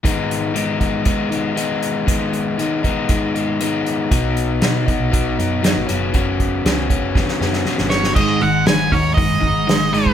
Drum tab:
CC |----------------|----------------|----------------|----------------|
HH |x-x-x-x-x-x-x-x-|x-x-x-x-x-x-x-x-|x-x-x-x-x-x-x-x-|x-x-x-x---------|
SD |----------------|----------------|----o-------o---|----o---oooooooo|
BD |o-----o-o-------|o-----o-o-------|o-----o-o-------|o-o---o-o-------|

CC |x---------------|
HH |--o-o-o-o-o-o-o-|
SD |----o-------o---|
BD |o-----o-o-o----o|